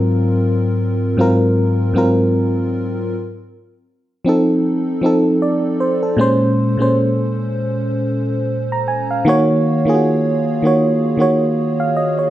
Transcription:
0.00 0.88 G#2 medium
0.00 0.89 F#3 medium
0.00 0.89 C4 medium
0.00 0.90 F4 medium
0.00 0.90 A#4 loud
1.17 1.78 G#2 medium
1.17 1.78 F#3 medium
1.17 1.79 C4 medium
1.17 1.79 F4 medium
1.21 1.80 A#4 loud
1.93 3.09 G#2 medium
1.93 3.09 F#3 medium
1.93 3.10 C4 medium
1.93 3.11 F4 medium
1.98 3.11 A#4 loud
4.25 4.85 F3 medium
4.25 4.86 C4 medium
4.25 4.87 D#4 medium
4.29 4.88 A4 medium
5.01 5.89 F3 medium
5.01 5.90 C4 medium
5.01 5.91 D#4 medium
5.06 5.43 A4 medium
5.42 5.79 D5 medium
5.80 6.02 C5 medium
6.03 6.39 A4 medium
6.17 6.61 A#2 loud
6.17 6.62 G#3 loud
6.17 6.63 C#4 medium
6.21 6.63 C5 loud
6.77 7.76 A#2 medium
6.77 7.76 G#3 medium
6.77 7.77 C#4 medium
6.82 7.78 C5 medium
8.72 8.87 A#5 medium
8.88 9.09 G#5 medium
9.11 9.47 F5 medium
9.25 9.69 D#3 loud
9.25 9.70 A#3 loud
9.25 9.71 F#4 loud
9.29 9.71 C#5 loud
9.85 10.40 D#3 medium
9.85 10.41 A#3 medium
9.85 9.93 F4 medium
9.89 10.42 G#4 medium
9.94 10.45 F#4 medium
10.62 11.05 D#3 medium
10.62 11.06 A#3 medium
10.62 11.07 F#4 medium
10.67 11.07 C#5 medium
11.17 12.05 D#3 medium
11.17 12.06 A#3 medium
11.17 12.06 F#4 medium
11.21 11.59 C#5 medium
11.80 11.95 F5 medium
11.97 12.17 D#5 medium
12.19 12.30 C#5 medium

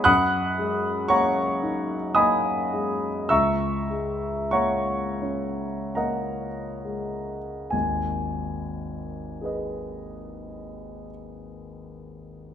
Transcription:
0.04 3.26 F#2 medium
0.04 1.05 F#5 medium
0.04 1.05 B5 medium
0.04 1.06 D#6 medium
0.04 1.09 F#6 medium
0.58 1.41 G#3 soft
1.08 1.94 A#3 soft
1.08 2.12 C#5 medium
1.08 2.12 F#5 medium
1.08 2.12 A#5 medium
1.08 2.15 C#6 medium
1.63 2.50 D#4 soft
2.15 3.07 A#3 soft
2.15 3.26 D#5 medium
2.15 3.26 G#5 medium
2.15 3.26 B5 medium
2.15 3.29 D#6 medium
2.72 3.30 G#3 soft
3.29 7.68 C#2 soft
3.29 4.49 E5 medium
3.29 4.49 A#5 medium
3.29 4.49 C#6 medium
3.29 4.52 E6 medium
3.90 4.93 G#3 soft
4.51 5.66 A#3 soft
4.51 5.93 C#5 medium
4.51 5.93 F#5 medium
4.51 5.93 A#5 medium
4.51 5.96 C#6 medium
5.22 6.47 C#4 soft
5.95 7.38 A#3 soft
5.95 7.68 A#4 soft
5.95 7.68 D#5 soft
5.95 7.68 F#5 soft
5.95 7.71 A#5 medium
6.84 7.72 G#3 soft
7.70 11.08 G#1 soft
7.70 11.08 D#2 soft
7.70 11.06 G#5 soft
9.41 12.54 G#4 soft
9.41 12.54 B4 soft
9.41 12.54 D#5 soft

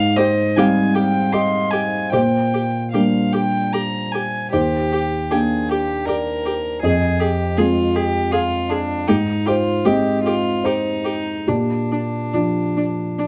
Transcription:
0.00 0.54 G#2 medium
0.00 0.18 F5 medium
0.16 0.25 G4 medium
0.16 0.53 C5 loud
0.16 0.58 D#5 medium
0.56 2.08 G3 medium
0.56 2.08 C4 medium
0.56 2.08 D#4 medium
0.56 0.65 G4 medium
0.56 1.30 F5 loud
0.56 0.96 G#5 medium
0.94 1.03 G4 medium
0.94 1.34 G5 medium
1.33 1.41 G4 medium
1.33 2.08 D#5 medium
1.33 1.72 C6 medium
1.70 1.80 G4 soft
1.70 2.11 G#5 medium
2.10 2.91 A#2 medium
2.10 2.21 G4 soft
2.10 2.89 C5 medium
2.10 2.84 G5 medium
2.54 2.62 G4 soft
2.91 4.50 G3 soft
2.91 4.49 A#3 soft
2.91 4.49 D4 soft
2.91 3.02 G4 soft
2.91 3.70 A#4 soft
2.91 3.34 F5 soft
3.32 3.42 G4 soft
3.32 3.74 G5 medium
3.72 3.81 G4 soft
3.72 4.13 A#5 medium
4.12 4.22 G4 soft
4.12 4.52 G#5 soft
4.53 5.28 D#2 medium
4.53 5.32 G4 medium
4.53 4.61 G4 soft
4.53 6.03 C5 medium
4.92 5.00 G4 soft
5.31 6.79 A#3 soft
5.31 6.79 D4 soft
5.31 5.39 G4 soft
5.31 5.71 G#4 medium
5.31 6.79 G5 soft
5.69 6.07 G4 medium
5.69 5.79 G4 soft
6.06 6.16 G4 soft
6.06 6.82 A#4 medium
6.06 6.78 D5 medium
6.46 6.54 G4 soft
6.82 7.55 F2 medium
6.82 7.22 G#4 medium
6.82 6.92 G#4 soft
6.82 8.29 D#5 medium
7.20 7.59 G4 medium
7.20 7.28 G#4 medium
7.57 9.04 G#3 soft
7.57 9.04 C4 soft
7.57 7.97 F4 medium
7.57 9.05 F4 medium
7.57 7.65 G#4 medium
7.95 8.33 G4 medium
7.95 8.03 G#4 medium
8.31 8.71 F4 medium
8.31 8.40 G#4 medium
8.31 9.04 F5 medium
8.69 9.09 D4 medium
8.69 8.78 G#4 soft
9.07 9.83 G#2 medium
9.07 9.47 D#4 medium
9.07 9.16 G4 medium
9.46 9.87 F4 medium
9.46 9.55 G4 medium
9.46 9.83 C5 medium
9.85 11.43 G#3 soft
9.85 11.43 C4 soft
9.85 9.93 G4 medium
9.85 10.23 G4 medium
9.85 11.43 G4 medium
9.85 10.61 D#5 medium
10.24 10.67 F4 medium
10.24 10.34 G4 soft
10.64 11.50 D#4 medium
10.64 10.73 G4 soft
10.64 11.43 C5 medium
11.05 11.13 G4 soft
11.47 12.31 A#2 soft
11.47 11.56 D4 soft
11.47 13.27 D4 soft
11.47 13.27 G4 medium
11.92 12.00 D4 soft
12.33 13.27 F3 soft
12.33 12.41 D4 soft
12.33 13.27 D4 soft
12.33 13.27 F4 soft
12.77 12.85 D4 soft
13.19 13.27 D4 soft

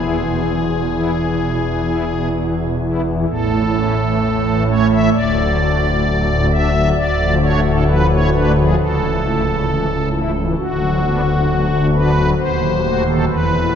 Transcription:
0.00 3.25 E1 medium
0.00 3.25 E2 medium
0.00 0.16 B3 soft
0.00 0.16 E4 medium
0.00 2.28 G#4 medium
0.19 0.40 B2 soft
0.43 0.64 E3 soft
0.67 0.88 B2 medium
0.91 1.11 B3 soft
0.91 1.11 E4 soft
1.14 1.35 E3 soft
1.38 1.58 B2 medium
1.60 1.82 E3 soft
1.84 2.04 B3 soft
1.84 2.04 E4 soft
2.07 2.29 B2 soft
2.32 2.54 E3 soft
2.56 2.78 B2 soft
2.81 3.02 B3 soft
2.81 3.02 E4 soft
3.03 3.24 E3 medium
3.27 5.09 A1 medium
3.27 5.09 A2 medium
3.27 4.63 A4 medium
3.51 3.72 A3 medium
3.74 3.95 A3 soft
3.74 3.95 C#4 medium
3.98 4.19 E3 medium
4.21 4.42 A3 medium
4.43 4.64 E3 medium
4.67 4.87 A3 soft
4.67 4.87 C#4 medium
4.67 4.87 C#5 medium
4.89 5.09 A3 medium
4.89 5.09 E5 medium
5.12 6.91 D1 medium
5.12 6.91 D2 medium
5.12 6.46 D5 loud
5.36 5.57 F#3 medium
5.59 5.79 A3 medium
5.59 5.79 D4 medium
5.82 6.02 A2 soft
6.04 6.25 F#3 medium
6.26 6.47 A2 medium
6.50 6.70 A3 medium
6.50 6.70 D4 medium
6.50 6.89 E5 medium
6.72 6.92 F#3 medium
6.95 8.74 D1 medium
6.95 8.74 D2 medium
6.95 7.34 D5 loud
7.18 7.38 F3 medium
7.40 7.60 A3 medium
7.40 7.60 D4 medium
7.40 7.60 C#5 loud
7.63 7.84 A2 medium
7.63 7.83 A4 medium
7.87 8.07 F3 medium
7.87 8.07 B4 loud
8.10 8.30 A2 medium
8.10 8.29 C#5 medium
8.32 8.52 A3 medium
8.32 8.52 D4 medium
8.32 8.52 B4 loud
8.56 8.75 F3 medium
8.56 8.75 G#4 medium
8.78 10.53 C#1 medium
8.78 10.53 C#2 medium
8.78 10.08 A4 loud
9.00 9.20 E3 medium
9.23 9.42 A3 medium
9.23 9.42 E4 medium
9.44 9.65 C#3 medium
9.66 9.87 E3 medium
9.89 10.09 C#3 medium
10.12 10.31 A3 medium
10.12 10.31 E4 medium
10.35 10.54 E3 medium
10.57 12.32 D1 medium
10.57 12.32 D2 medium
10.57 11.87 F#4 loud
10.80 10.99 F#3 medium
11.03 11.21 B3 medium
11.03 11.21 D4 medium
11.26 11.45 D3 medium
11.48 11.67 F#3 medium
11.70 11.90 D3 medium
11.92 12.11 B3 medium
11.92 12.11 D4 medium
11.92 12.30 B4 loud
12.15 12.34 F#3 medium
12.38 13.26 D#1 medium
12.38 13.26 D#2 medium
12.38 13.03 C5 loud
12.60 12.80 F#3 medium
12.82 13.02 A3 medium
12.82 13.02 F#4 medium
13.05 13.24 D#3 medium
13.05 13.25 A4 medium
13.28 13.75 E1 medium
13.28 13.75 E2 medium
13.28 13.75 B4 loud
13.52 13.73 E3 soft

